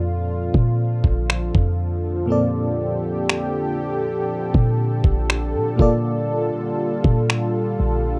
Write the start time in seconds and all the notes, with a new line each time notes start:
Already playing: F2 A#2 D3 F3 A#3 C4 F4 A4 D5
0.54 A#2, kick
1.04 A#1, kick
1.30 finger snap
1.55 F2, kick
2.26 A#2 A#3 C4 G4
2.30 A4 D5
3.29 finger snap
4.54 A#2, kick
5.04 A#1, kick
5.30 finger snap
5.55 A#2
5.76 A#2 G3 A#3 F4, kick
5.80 A4 D5
7.04 A#2, kick
7.30 finger snap
7.80 A#1